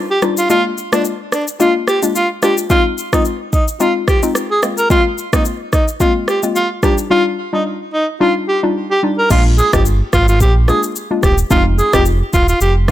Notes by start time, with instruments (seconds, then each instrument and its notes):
0.11 alto saxophone G4
0.22 synth pluck G3 D4 D#4 F4, cross-stick, shaker
0.37 alto saxophone F4, shaker
0.50 synth pluck G#3 A#3 D4 F4, alto saxophone F4, shaker
0.78 shaker
0.92 synth pluck G#3 A#3 D4 F4, alto saxophone D4, cross-stick, shaker
1.05 shaker
1.32 alto saxophone D4, cross-stick, shaker
1.48 shaker
1.60 synth pluck G#3 A#3 D4 F4, alto saxophone F4, shaker
1.88 alto saxophone G4, cross-stick, shaker
2.02 synth pluck G#3 A#3 D4 F4, shaker
2.16 alto saxophone F4, shaker
2.42 synth pluck G#3 A#3 D4 F4, alto saxophone G4, cross-stick, shaker
2.58 shaker
2.70 synth pluck G#3 C4 D#4 F4, alto saxophone F4, kick, shaker
2.98 shaker
3.13 synth pluck G#3 C4 D#4 F4, alto saxophone D#4, kick, cross-stick, shaker
3.25 shaker
3.53 alto saxophone D#4, kick, shaker
3.68 shaker
3.80 synth pluck G#3 C4 D#4 F4, alto saxophone F4, shaker
4.08 alto saxophone G4, kick, cross-stick, shaker
4.23 synth pluck G#3 C4 D#4 F4, shaker
4.35 cross-stick, shaker
4.51 alto saxophone G#4
4.63 synth pluck G#3 A#3 C4 F4, cross-stick, shaker
4.78 alto saxophone A#4, shaker
4.90 synth pluck G#3 A#3 C4 F4, alto saxophone F4, kick, shaker
5.18 shaker
5.33 synth pluck G#3 A#3 C4 F4, alto saxophone D#4, kick, cross-stick, shaker
5.45 shaker
5.73 alto saxophone D#4, kick, cross-stick, shaker
5.88 shaker
6.00 synth pluck G#3 A#3 C4 F4, alto saxophone F4, kick, shaker
6.28 alto saxophone G4, cross-stick, shaker
6.43 synth pluck G#3 A#3 C4 F4, shaker
6.56 alto saxophone F4, shaker
6.83 synth pluck G3 D4 D#4 F4, alto saxophone G4, kick, cross-stick, shaker
6.98 shaker
7.10 synth pluck G3 D4 D#4 F4, alto saxophone F4
7.53 synth pluck G3 D4 D#4 F4, alto saxophone D#4
7.94 alto saxophone D#4
8.20 synth pluck G3 D4 D#4 F4, alto saxophone F4
8.48 alto saxophone G4
8.63 synth pluck G3 D4 D#4 F4
8.91 alto saxophone G4
9.03 synth pluck G3 D4 D#4 F4
9.19 alto saxophone A#4
9.30 sub bass A#1, synth pluck G#3 A#3 D4 F4, alto saxophone F4, kick, crash, shaker
9.58 alto saxophone G#4, shaker
9.73 sub bass G1, synth pluck G#3 A#3 D4 F4, alto saxophone G4, kick, cross-stick, shaker
9.85 shaker
10.13 sub bass G#1, alto saxophone F4, kick, cross-stick, shaker
10.28 alto saxophone F4, shaker
10.40 sub bass A#1, alto saxophone G4, kick, shaker
10.68 synth pluck G#3 A#3 D4 F4, alto saxophone G#4, cross-stick, shaker
10.83 shaker
10.96 shaker
11.11 synth pluck G#3 A#3 D4 F4
11.23 sub bass D#1, alto saxophone G4, kick, cross-stick, shaker
11.38 shaker
11.50 sub bass F1, synth pluck G#3 C4 D#4 F4, alto saxophone F4, kick, shaker
11.79 alto saxophone G#4, shaker
11.93 sub bass F1, synth pluck G#3 C4 D#4 F4, alto saxophone G4, kick, cross-stick, shaker
12.06 shaker
12.33 sub bass D#1, alto saxophone F4, kick, shaker
12.48 alto saxophone F4, shaker
12.61 sub bass F1, alto saxophone G4, shaker
12.88 synth pluck G#3, cross-stick